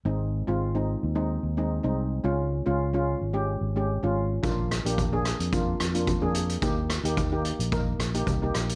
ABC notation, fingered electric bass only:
X:1
M:4/4
L:1/16
Q:"Swing 16ths" 1/4=110
K:Ab
V:1 name="Fingered electric bass" clef=bass
A,,,3 A,,,4 E,,3 E,,3 C,,3 | D,,3 D,,4 A,,,3 A,,,3 A,,,3 | B,,,3 B,,,4 F,,3 F,,3 F,,3 | E,,3 E,,4 B,,,3 B,,,2 C,,2 B,,,2 |]